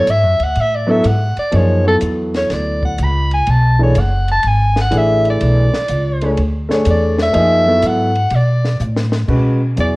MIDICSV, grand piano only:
0, 0, Header, 1, 2, 480
1, 0, Start_track
1, 0, Tempo, 485044
1, 1515, Time_signature, 4, 2, 24, 8
1, 9856, End_track
2, 0, Start_track
2, 0, Title_t, "Grand piano"
2, 0, Program_c, 0, 0
2, 857, Note_on_c, 0, 54, 80
2, 859, Note_on_c, 0, 59, 78
2, 869, Note_on_c, 0, 64, 70
2, 880, Note_on_c, 0, 69, 95
2, 1007, Note_off_c, 0, 54, 0
2, 1008, Note_off_c, 0, 59, 0
2, 1013, Note_off_c, 0, 64, 0
2, 1019, Note_off_c, 0, 69, 0
2, 1500, Note_on_c, 0, 53, 71
2, 1504, Note_on_c, 0, 58, 64
2, 1516, Note_on_c, 0, 63, 58
2, 1523, Note_on_c, 0, 68, 75
2, 1802, Note_off_c, 0, 53, 0
2, 1804, Note_off_c, 0, 58, 0
2, 1810, Note_off_c, 0, 63, 0
2, 1814, Note_off_c, 0, 68, 0
2, 1822, Note_on_c, 0, 54, 57
2, 1834, Note_on_c, 0, 59, 52
2, 1842, Note_on_c, 0, 64, 53
2, 1845, Note_on_c, 0, 69, 66
2, 2854, Note_off_c, 0, 54, 0
2, 2860, Note_off_c, 0, 59, 0
2, 2864, Note_off_c, 0, 64, 0
2, 2865, Note_off_c, 0, 69, 0
2, 3752, Note_on_c, 0, 52, 73
2, 3760, Note_on_c, 0, 57, 58
2, 3767, Note_on_c, 0, 62, 63
2, 3771, Note_on_c, 0, 68, 73
2, 3895, Note_off_c, 0, 52, 0
2, 3899, Note_off_c, 0, 57, 0
2, 3902, Note_off_c, 0, 62, 0
2, 3905, Note_off_c, 0, 68, 0
2, 4858, Note_on_c, 0, 52, 78
2, 4866, Note_on_c, 0, 57, 62
2, 4872, Note_on_c, 0, 62, 64
2, 4879, Note_on_c, 0, 68, 87
2, 5609, Note_off_c, 0, 52, 0
2, 5613, Note_off_c, 0, 57, 0
2, 5616, Note_off_c, 0, 62, 0
2, 5619, Note_off_c, 0, 68, 0
2, 6155, Note_on_c, 0, 57, 69
2, 6165, Note_on_c, 0, 62, 61
2, 6171, Note_on_c, 0, 68, 70
2, 6172, Note_on_c, 0, 73, 81
2, 6297, Note_off_c, 0, 57, 0
2, 6301, Note_off_c, 0, 62, 0
2, 6305, Note_off_c, 0, 68, 0
2, 6305, Note_off_c, 0, 73, 0
2, 6619, Note_on_c, 0, 57, 80
2, 6633, Note_on_c, 0, 62, 82
2, 6637, Note_on_c, 0, 68, 70
2, 6641, Note_on_c, 0, 73, 91
2, 7233, Note_off_c, 0, 57, 0
2, 7240, Note_off_c, 0, 62, 0
2, 7242, Note_off_c, 0, 68, 0
2, 7244, Note_off_c, 0, 73, 0
2, 7252, Note_on_c, 0, 58, 77
2, 7254, Note_on_c, 0, 53, 79
2, 7261, Note_on_c, 0, 63, 79
2, 7263, Note_on_c, 0, 68, 91
2, 7558, Note_off_c, 0, 58, 0
2, 7559, Note_off_c, 0, 53, 0
2, 7563, Note_off_c, 0, 63, 0
2, 7564, Note_off_c, 0, 68, 0
2, 7577, Note_on_c, 0, 54, 66
2, 7585, Note_on_c, 0, 59, 71
2, 7592, Note_on_c, 0, 64, 67
2, 7595, Note_on_c, 0, 69, 76
2, 8005, Note_off_c, 0, 54, 0
2, 8009, Note_off_c, 0, 59, 0
2, 8012, Note_off_c, 0, 64, 0
2, 8013, Note_off_c, 0, 69, 0
2, 9181, Note_on_c, 0, 56, 65
2, 9187, Note_on_c, 0, 61, 61
2, 9194, Note_on_c, 0, 66, 64
2, 9199, Note_on_c, 0, 71, 75
2, 9483, Note_off_c, 0, 56, 0
2, 9486, Note_off_c, 0, 61, 0
2, 9490, Note_off_c, 0, 66, 0
2, 9492, Note_off_c, 0, 71, 0
2, 9660, Note_on_c, 0, 54, 60
2, 9665, Note_on_c, 0, 59, 53
2, 9671, Note_on_c, 0, 64, 57
2, 9677, Note_on_c, 0, 68, 72
2, 9856, Note_off_c, 0, 54, 0
2, 9856, Note_off_c, 0, 59, 0
2, 9856, Note_off_c, 0, 64, 0
2, 9856, Note_off_c, 0, 68, 0
2, 9856, End_track
0, 0, End_of_file